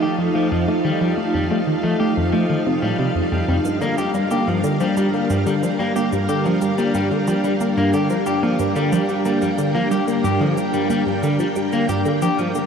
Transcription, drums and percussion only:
3.65 cabasa
3.81 low bongo, cabasa
3.98 cabasa
4.14 cabasa
4.31 cabasa
4.64 low bongo, cabasa
4.80 cabasa
4.97 cabasa
5.30 cabasa
5.46 low bongo, cabasa
5.63 cabasa
5.96 cabasa
6.12 cabasa
6.29 low bongo, cabasa
6.45 cabasa
6.61 cabasa
6.78 cabasa
6.94 cabasa
7.11 low bongo
7.27 cabasa
7.44 cabasa
7.60 cabasa
7.93 low bongo, cabasa
8.10 cabasa
8.26 cabasa
8.59 cabasa
8.76 low bongo, cabasa
8.92 cabasa
9.09 cabasa
9.25 cabasa
9.42 cabasa
9.58 low bongo, cabasa
9.91 cabasa
10.08 cabasa
10.24 cabasa
10.41 low bongo
10.57 cabasa
10.74 cabasa
10.90 cabasa
11.23 low bongo, cabasa
11.39 cabasa
11.56 cabasa
11.72 cabasa
11.89 cabasa
12.05 low bongo, cabasa
12.22 cabasa
12.39 cabasa
12.55 cabasa

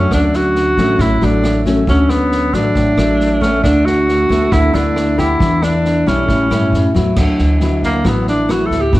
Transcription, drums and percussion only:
0.11 kick, cross-stick, snare
0.33 snare
0.55 snare
0.77 kick, snare
0.99 kick, cross-stick, snare
1.21 snare
1.44 cross-stick, snare
1.65 kick, snare
1.87 kick, snare
2.09 cross-stick, snare
2.31 snare
2.53 kick, snare
2.75 kick, snare
2.97 cross-stick, snare
3.20 snare
3.42 kick, snare
3.64 kick, cross-stick, snare
3.86 snare
4.08 snare
4.30 kick, snare
4.52 kick, cross-stick, snare
4.74 snare
4.96 cross-stick, snare
5.18 kick, snare
5.40 kick, snare
5.62 cross-stick, snare
5.85 snare
6.07 kick, snare
6.29 kick, snare
6.51 cross-stick, snare
6.74 snare
6.95 kick, snare
7.16 kick, cross-stick, snare, crash
7.38 snare
7.60 snare
7.83 kick, snare
8.05 kick, cross-stick, snare
8.27 snare
8.49 cross-stick, snare
8.71 kick, snare
8.93 kick, snare

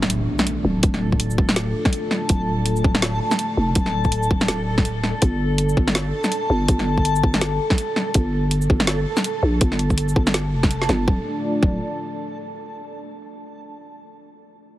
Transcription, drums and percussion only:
0.02 snare
0.10 closed hi-hat
0.39 snare, shaker
0.47 closed hi-hat
0.83 kick, closed hi-hat
0.94 snare
1.12 kick
1.20 closed hi-hat
1.30 shaker
1.38 kick
1.49 snare, shaker
1.56 snare, closed hi-hat
1.85 kick, snare
1.93 closed hi-hat
2.11 snare
2.29 kick, closed hi-hat
2.66 closed hi-hat
2.76 shaker
2.84 kick
2.95 snare
3.02 snare, closed hi-hat
3.31 snare, shaker
3.39 closed hi-hat
3.75 kick, closed hi-hat
3.86 snare
4.04 kick, shaker
4.12 closed hi-hat
4.23 shaker
4.31 kick
4.41 snare, shaker
4.48 snare, closed hi-hat
4.78 kick, snare
4.85 closed hi-hat
5.04 snare
5.22 kick, closed hi-hat
5.58 closed hi-hat
5.69 shaker
5.77 kick
5.88 snare
5.95 snare, closed hi-hat
6.24 snare, shaker
6.32 closed hi-hat
6.68 kick, closed hi-hat
6.79 snare
6.98 kick
7.05 closed hi-hat
7.16 shaker
7.24 kick
7.34 snare, shaker
7.41 snare, closed hi-hat
7.70 kick, snare
7.78 closed hi-hat
7.96 snare
8.14 kick, closed hi-hat
8.51 closed hi-hat
8.62 shaker
8.70 kick
8.80 snare
8.87 snare, closed hi-hat
9.17 snare, shaker
9.24 closed hi-hat
9.61 kick, closed hi-hat
9.72 snare
9.79 closed hi-hat
9.90 kick, shaker
9.98 closed hi-hat
10.09 shaker
10.16 kick
10.27 snare, shaker
10.34 snare, closed hi-hat
10.63 kick, snare
10.71 closed hi-hat
10.82 snare
10.89 snare, closed hi-hat, shaker
11.08 kick
11.63 kick

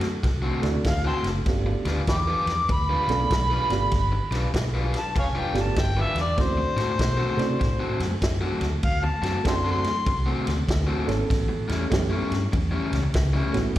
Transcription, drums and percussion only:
0.01 snare, ride
0.23 kick, snare, ride
0.63 snare, ride
0.84 kick, snare, ride
1.24 snare, ride
1.46 kick, snare, ride
1.85 snare, ride
2.07 kick, snare, ride
2.47 snare, ride
2.69 kick, ride
3.09 snare, ride
3.31 kick, snare, ride
3.70 snare, ride
3.91 kick, snare, ride
4.32 snare, ride
4.54 kick, snare, ride
4.94 snare, ride
5.16 kick, ride
5.55 snare, ride
5.76 kick, snare, ride
6.15 snare, ride
6.38 kick, snare, ride
6.77 snare, ride
6.99 kick, snare, ride
7.39 snare, ride
7.61 kick, snare, ride
8.00 snare, ride
8.22 kick, snare, ride
8.61 snare, ride
8.83 kick, ride
9.23 snare, ride
9.45 kick, snare, ride
9.84 snare, ride
10.06 kick, ride
10.47 snare, ride
10.69 kick, snare, ride
11.09 snare, ride
11.30 kick, snare, ride
11.69 snare, ride
11.92 kick, snare, ride
12.32 snare, ride
12.53 kick, ride
12.93 snare, ride
13.14 kick, snare, ride
13.54 snare, ride
13.76 ride

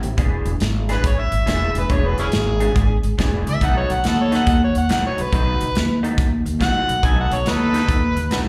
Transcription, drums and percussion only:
0.03 closed hi-hat
0.18 kick, closed hi-hat
0.46 closed hi-hat
0.60 snare, closed hi-hat
0.89 snare, closed hi-hat
1.04 kick, closed hi-hat
1.32 closed hi-hat
1.47 snare, closed hi-hat
1.75 closed hi-hat
1.90 kick, closed hi-hat
2.18 closed hi-hat
2.32 snare, closed hi-hat
2.60 closed hi-hat
2.76 kick, closed hi-hat
3.03 closed hi-hat
3.19 kick, snare, closed hi-hat
3.47 closed hi-hat
3.61 kick, closed hi-hat
3.90 closed hi-hat
4.04 snare, closed hi-hat
4.32 snare, closed hi-hat
4.47 kick, closed hi-hat
4.75 closed hi-hat
4.89 snare, closed hi-hat
5.18 closed hi-hat
5.33 kick, closed hi-hat
5.61 closed hi-hat
5.75 snare, closed hi-hat
6.04 closed hi-hat
6.18 kick, closed hi-hat
6.46 closed hi-hat
6.61 kick, snare, closed hi-hat
6.89 closed hi-hat
7.03 kick, closed hi-hat
7.31 closed hi-hat
7.46 snare, closed hi-hat
7.74 snare, closed hi-hat
7.89 kick, closed hi-hat
8.17 closed hi-hat
8.31 snare, closed hi-hat

